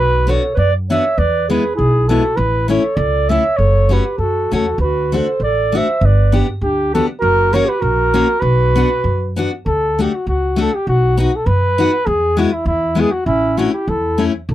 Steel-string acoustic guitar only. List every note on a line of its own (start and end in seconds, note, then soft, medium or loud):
0.27 0.41 B3 medium
0.27 0.41 D4 medium
0.27 0.42 F#4 medium
0.90 1.03 B3 medium
0.90 1.03 D4 medium
0.90 1.04 F#4 medium
1.50 1.62 G#3 medium
1.50 1.62 B3 medium
1.50 1.63 E4 medium
2.09 2.21 G#3 medium
2.09 2.22 B3 medium
2.09 2.22 E4 medium
2.68 2.81 A3 medium
2.68 2.82 C#4 medium
2.68 2.82 E4 medium
3.29 3.42 A3 medium
3.29 3.43 C#4 medium
3.29 3.43 E4 medium
3.89 4.02 A3 medium
3.89 4.03 C#4 medium
3.89 4.03 F#4 medium
4.52 4.64 A3 medium
4.52 4.65 C#4 medium
4.52 4.65 F#4 medium
5.12 5.25 A3 medium
5.12 5.26 D4 medium
5.12 5.26 F#4 medium
5.72 5.86 A3 medium
5.72 5.86 D4 medium
5.72 5.87 F#4 medium
6.32 6.46 B3 medium
6.32 6.46 D4 medium
6.32 6.46 G4 medium
6.95 7.07 B3 medium
6.95 7.07 D4 medium
6.95 7.07 G4 medium
7.53 7.66 A#3 medium
7.53 7.66 C#4 medium
7.53 7.67 F#4 medium
8.14 8.26 A#3 medium
8.14 8.26 C#4 medium
8.14 8.27 F#4 medium
8.76 8.88 B3 medium
8.76 8.88 D4 medium
8.76 8.89 F#4 medium
9.36 9.49 B3 medium
9.36 9.50 D4 medium
9.36 9.50 F#4 medium
9.99 10.11 A3 medium
9.99 10.11 D4 medium
9.99 10.11 F#4 medium
10.56 10.69 A3 medium
10.56 10.70 D4 medium
10.56 10.70 F#4 medium
11.17 11.30 B3 medium
11.17 11.30 D#4 medium
11.17 11.31 F#4 medium
11.78 11.90 B3 medium
11.78 11.90 D#4 medium
11.78 11.91 F#4 medium
12.37 12.49 G#3 medium
12.37 12.49 B3 medium
12.37 12.50 E4 medium
12.95 13.08 G#3 medium
12.95 13.09 B3 medium
12.95 13.09 E4 medium
13.57 13.70 A3 medium
13.57 13.71 C#4 medium
13.57 13.71 E4 medium
14.18 14.31 A3 medium
14.18 14.31 C#4 medium
14.18 14.32 E4 medium